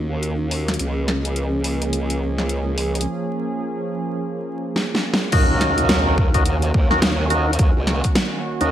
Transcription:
Already playing: D#2 D#3 A#3 C#4 F#4
0.23 closed hi-hat
0.51 open hi-hat
0.68 snare, closed hi-hat
0.74 closed hi-hat
0.79 C#2 F3 A#3 C#4 G#4, closed hi-hat
1.08 snare, closed hi-hat
1.25 closed hi-hat
1.36 closed hi-hat
1.64 open hi-hat
1.82 closed hi-hat
1.93 closed hi-hat
2.10 closed hi-hat
2.38 snare
2.49 closed hi-hat
2.78 open hi-hat
2.95 closed hi-hat
3.01 closed hi-hat
4.76 snare
4.95 snare
5.14 snare
5.32 D#2 D#3 A#3 C#4 D#4 F#4 A#4, kick, closed hi-hat, crash, impact
5.50 D#2
5.61 snare, closed hi-hat
5.78 closed hi-hat
5.89 D#2, snare, closed hi-hat
6.18 kick
6.34 C#4 D#4 F#4 A#4, kick, closed hi-hat
6.45 closed hi-hat
6.62 closed hi-hat
6.74 D#2, kick
6.91 C#4 D#4 F#4 A#4, snare
7.02 snare, closed hi-hat
7.30 C#4 D#4 F#4 A#4, closed hi-hat
7.53 closed hi-hat
7.59 D#2, kick, closed hi-hat
7.77 C#2
7.87 snare, closed hi-hat
8.04 kick, closed hi-hat
8.15 snare, closed hi-hat
8.61 D#2 C#4 D#4 F#4 A#4, closed hi-hat

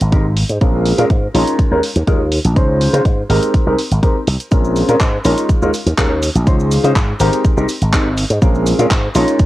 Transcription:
0.01 G#1, closed hi-hat, tambourine
0.12 G#3 C4 D#4 G4 A#4, kick, closed hi-hat
0.25 tambourine
0.37 open hi-hat
0.49 G#2, closed hi-hat, tambourine
0.60 A#1 G#3 C4 C#4 F4 A#4, kick, closed hi-hat, tambourine
0.74 tambourine
0.86 open hi-hat
0.98 A#2 G#3 C4 C#4 F4 A#4, closed hi-hat, tambourine
1.10 G#2, kick, closed hi-hat
1.22 tambourine
1.34 A#1 G#3 C#4 D#4 F4 A#4, open hi-hat
1.47 closed hi-hat, tambourine
1.59 muted slap bass stroke, kick, closed hi-hat
1.71 D#2 G#3 C#4 D#4 F4 A#4, tambourine
1.83 open hi-hat
1.96 D#2, closed hi-hat, tambourine
2.07 D#2 G#3 C#4 D#4 F4 A#4, kick, closed hi-hat
2.20 tambourine
2.32 open hi-hat
2.44 A#1, closed hi-hat, tambourine
2.56 C#2 G#3 C#4 D#4 F4 C5, kick, closed hi-hat
2.69 tambourine
2.81 open hi-hat
2.93 C#3 G#3 C#4 D#4 F4 C5, closed hi-hat, tambourine
3.05 G#2, kick, closed hi-hat
3.18 tambourine
3.29 G#1 G#3 C4 D#4 G4 A#4, open hi-hat
3.43 closed hi-hat, tambourine
3.54 kick, closed hi-hat, tambourine
3.66 C2 G#3 C4 D#4 G4 A#4, tambourine
3.79 open hi-hat
3.91 G#1, closed hi-hat, tambourine
4.02 G#3 C4 D#4 G4 A#4, kick, closed hi-hat
4.16 tambourine
4.27 C2, open hi-hat
4.40 closed hi-hat, tambourine
4.51 A#1 G#3 C4 C#4 F4 A#4, kick, closed hi-hat, shaker
4.65 tambourine, shaker
4.76 open hi-hat, shaker
4.88 A#2 G#3 C4 C#4 F4 A#4, closed hi-hat, tambourine, shaker
5.00 G#2, kick, clap, closed hi-hat, shaker
5.14 tambourine
5.25 A#1 G#3 C#4 D#4 F4 A#4, open hi-hat, shaker
5.38 closed hi-hat, tambourine, shaker
5.49 muted slap bass stroke, kick, closed hi-hat, shaker
5.62 D#2 G#3 C#4 D#4 F4 A#4, tambourine, shaker
5.74 open hi-hat, shaker
5.86 D#2, closed hi-hat, tambourine, shaker
5.98 D#2 G#3 C#4 D#4 F4 A#4, kick, clap, closed hi-hat, shaker
6.23 open hi-hat, shaker
6.35 A#1, closed hi-hat, tambourine, shaker
6.47 C#2 G#3 C#4 D#4 F4 C5, kick, closed hi-hat, shaker
6.60 tambourine, shaker
6.72 open hi-hat, shaker
6.84 C#3 G#3 C#4 D#4 F4 C5, closed hi-hat, tambourine, shaker
6.96 G#2, kick, clap, closed hi-hat, shaker
7.20 G#1 G#3 C4 D#4 G4 A#4, open hi-hat, shaker
7.32 closed hi-hat, tambourine, shaker
7.44 kick, closed hi-hat, shaker
7.56 C2 G#3 C4 D#4 G4 A#4, tambourine, shaker
7.69 open hi-hat, shaker
7.81 G#1, closed hi-hat, tambourine, shaker
7.93 G#1 G#3 C4 D#4 G4 A#4, kick, clap, closed hi-hat, shaker
8.06 tambourine
8.18 open hi-hat, shaker
8.30 G#2, closed hi-hat, tambourine, shaker
8.42 A#1 G#3 C4 C#4 F4 A#4, kick, closed hi-hat, shaker
8.54 tambourine, shaker
8.66 open hi-hat, shaker
8.79 A#2 G#3 C4 C#4 F4 A#4, closed hi-hat, tambourine, shaker
8.91 G#2, kick, clap, closed hi-hat, shaker
9.03 tambourine
9.14 A#1 G#3 C#4 D#4 F4 A#4, open hi-hat, shaker
9.28 closed hi-hat, tambourine, shaker
9.39 muted slap bass stroke, kick, closed hi-hat, shaker

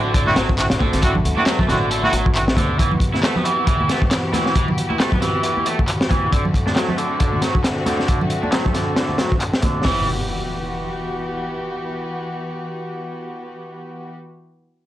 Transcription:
Already playing: A1 D3 A3 C4 F#4
0.14 D3, kick, closed hi-hat
0.27 C4 E4 F#4, high conga
0.36 A1 F#3, snare, closed hi-hat
0.49 kick
0.58 C4 E4 F#4, snare, clap, closed hi-hat
0.70 A1, snare, closed hi-hat
0.81 A1 D3, kick, high conga
0.93 A1, snare, closed hi-hat
1.02 D3 B3 C4 E4 F#4, kick, closed hi-hat
1.15 low conga
1.25 D2, closed hi-hat
1.37 C4 D4 E4 F#4, high conga
1.46 F#3, snare, clap, closed hi-hat
1.59 A3, kick, low conga
1.68 A1 D3 C4 E4 F#4, snare, closed hi-hat
1.91 D3, closed hi-hat
2.04 C4 E4 F#4, high conga
2.13 A1 F#3, closed hi-hat
2.26 kick
2.35 C4 E4 F#4, clap, closed hi-hat
2.48 snare
2.57 D2 D3, kick, closed hi-hat, high conga
2.79 E3 G4, kick, closed hi-hat
2.91 low conga
3.00 kick, closed hi-hat
3.14 E4, snare, high conga
3.23 A3, snare, clap, closed hi-hat
3.36 B3, low conga
3.45 E3, closed hi-hat
3.67 E3, kick, closed hi-hat
3.80 high conga
3.89 A3, snare, closed hi-hat
4.02 kick
4.11 snare, clap, closed hi-hat
4.33 E3, snare, closed hi-hat, high conga
4.46 snare
4.56 E3, kick, closed hi-hat
4.68 low conga
4.78 closed hi-hat
4.90 E4, high conga
5.00 A3, snare, clap, closed hi-hat
5.12 B3, kick, low conga
5.22 E3, snare, closed hi-hat
5.43 E3, closed hi-hat
5.57 high conga
5.66 A3, closed hi-hat
5.79 kick
5.88 clap, closed hi-hat
6.01 snare
6.10 E3, kick, closed hi-hat, high conga
6.32 D3 A3 C4 F#4, kick, closed hi-hat
6.45 low conga
6.54 kick, closed hi-hat
6.67 D4, snare, high conga
6.76 F#3, snare, clap, closed hi-hat
6.89 A3, low conga
6.98 D3, closed hi-hat
7.20 D3, kick, closed hi-hat
7.33 high conga
7.42 F#3, snare, closed hi-hat
7.55 kick
7.64 snare, clap, closed hi-hat
7.86 D3, snare, closed hi-hat, high conga
8.00 snare
8.08 D3, kick, closed hi-hat
8.21 low conga
8.30 closed hi-hat
8.43 D4, high conga
8.52 F#3, snare, clap, closed hi-hat
8.65 A3, kick, low conga
8.74 D3, snare, closed hi-hat
8.96 D3, snare, closed hi-hat
9.09 high conga
9.18 F#3, snare, closed hi-hat
9.32 kick
9.40 clap, closed hi-hat
9.54 snare
9.62 D3, kick, closed hi-hat, high conga
9.85 E3 B3 F#4 G4, kick, snare, open hi-hat, impact

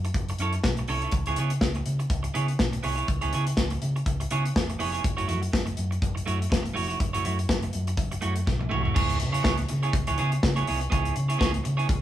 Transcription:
0.05 muted clean electric guitar stroke, closed hi-hat
0.14 F#1, kick, closed hi-hat
0.28 muted clean electric guitar stroke, closed hi-hat
0.38 F#2 C#4 E4 A4 C#5, closed hi-hat
0.53 muted clean electric guitar stroke, closed hi-hat
0.64 B1, muted clean electric guitar stroke, kick, snare
0.77 muted clean electric guitar stroke, closed hi-hat
0.88 C2 C#4 E4 A4 C#5, open hi-hat
1.02 C#4 E4 A4 C#5, closed hi-hat
1.12 C#2, muted clean electric guitar stroke, kick, closed hi-hat
1.26 C#2 B3 E4 G#4 C#5, closed hi-hat
1.36 C#3 B3 E4 G#4 C#5, closed hi-hat
1.50 muted clean electric guitar stroke, closed hi-hat
1.61 C#2, muted clean electric guitar stroke, kick, snare
1.75 muted clean electric guitar stroke, closed hi-hat
1.86 C#3, closed hi-hat
1.99 muted clean electric guitar stroke, closed hi-hat
2.10 C#2, kick, closed hi-hat
2.23 muted clean electric guitar stroke, closed hi-hat
2.34 C#3 B3 E4 G#4 C#5, closed hi-hat
2.48 muted clean electric guitar stroke, closed hi-hat
2.59 B1, muted clean electric guitar stroke, kick, snare
2.73 muted clean electric guitar stroke, closed hi-hat
2.83 C2 B3 E4 G#4 C#5, open hi-hat
2.96 B3 E4 G#4 C#5, closed hi-hat
3.08 C#2, muted clean electric guitar stroke, kick, closed hi-hat
3.21 C#2 B3 E4 G#4 C#5, closed hi-hat
3.33 C#3 B3 E4 G#4 C#5, closed hi-hat
3.46 muted clean electric guitar stroke, closed hi-hat
3.57 C#2, muted clean electric guitar stroke, kick, snare
3.70 muted clean electric guitar stroke, closed hi-hat
3.82 C#3, closed hi-hat
3.96 muted clean electric guitar stroke, closed hi-hat
4.06 C#2, kick, closed hi-hat
4.20 muted clean electric guitar stroke, closed hi-hat
4.31 C#3 B3 E4 G#4 C#5, closed hi-hat
4.45 muted clean electric guitar stroke, closed hi-hat
4.56 E1, muted clean electric guitar stroke, kick, snare
4.70 muted clean electric guitar stroke, closed hi-hat
4.79 F1 B3 E4 G#4 C#5, open hi-hat
4.92 B3 E4 G#4 C#5, closed hi-hat
5.04 F#1, muted clean electric guitar stroke, kick, closed hi-hat
5.17 F#1 A3 E4 F#4 C#5, closed hi-hat
5.27 F#2 A3 E4 F#4 C#5, closed hi-hat
5.42 muted clean electric guitar stroke, closed hi-hat
5.53 F#1, muted clean electric guitar stroke, kick, snare
5.66 muted clean electric guitar stroke, closed hi-hat
5.77 F#2, closed hi-hat
5.91 muted clean electric guitar stroke, closed hi-hat
6.02 F#1, kick, closed hi-hat
6.15 muted clean electric guitar stroke, closed hi-hat
6.26 F#2 A3 E4 F#4 C#5, closed hi-hat
6.40 muted clean electric guitar stroke, closed hi-hat
6.50 E1, muted clean electric guitar stroke, kick, snare
6.63 muted clean electric guitar stroke, closed hi-hat
6.74 F1 A3 E4 F#4 C#5, open hi-hat
6.88 A3 E4 F#4 C#5, closed hi-hat
6.99 F#1, muted clean electric guitar stroke, kick, closed hi-hat
7.13 F#1 A3 E4 F#4 C#5, closed hi-hat
7.24 F#2 A3 E4 F#4 C#5, closed hi-hat
7.39 muted clean electric guitar stroke, closed hi-hat
7.49 F#1, muted clean electric guitar stroke, kick, snare
7.62 muted clean electric guitar stroke, closed hi-hat
7.73 F#2, closed hi-hat
7.87 muted clean electric guitar stroke, closed hi-hat
7.97 F#1, kick, closed hi-hat
8.11 muted clean electric guitar stroke, closed hi-hat
8.21 F#2 A3 E4 F#4 C#5, closed hi-hat
8.35 muted clean electric guitar stroke, closed hi-hat
8.47 B1, muted clean electric guitar stroke, kick, snare
8.59 muted clean electric guitar stroke, high tom
8.69 C2 A3 E4 F#4 C#5, mid tom
8.83 A3 E4 F#4 C#5, floor tom
8.94 C#2 B3 E4 G#4 C#5, kick, crash
9.10 closed hi-hat
9.18 muted clean electric guitar stroke, closed hi-hat
9.23 C#3
9.32 B3 E4 G#4 C#5, closed hi-hat
9.43 C#2 B3 E4 G#4 C#5, kick, snare
9.58 muted clean electric guitar stroke, closed hi-hat
9.69 C#3, muted clean electric guitar stroke, closed hi-hat
9.83 B3 E4 G#4 C#5, closed hi-hat
9.93 C#2, muted clean electric guitar stroke, kick, closed hi-hat
10.07 C#2 B3 E4 G#4 C#5, closed hi-hat
10.18 C#3 B3 E4 G#4 C#5, closed hi-hat
10.32 muted clean electric guitar stroke, closed hi-hat
10.43 C#3, muted clean electric guitar stroke, kick, snare
10.56 B3 E4 G#4 C#5, closed hi-hat
10.67 C2 B3 E4 G#4 C#5, open hi-hat
10.81 muted clean electric guitar stroke, closed hi-hat
10.90 C#2 B3 E4 G#4 C#5, kick, closed hi-hat
11.05 closed hi-hat
11.16 C#3, muted clean electric guitar stroke, closed hi-hat
11.29 B3 E4 G#4 C#5, closed hi-hat
11.38 C#2 B3 E4 G#4 C#5, kick, snare
11.53 muted clean electric guitar stroke, closed hi-hat
11.64 C#3, muted clean electric guitar stroke, closed hi-hat
11.77 B3 E4 G#4 C#5, closed hi-hat
11.88 C#2, muted clean electric guitar stroke, kick, closed hi-hat

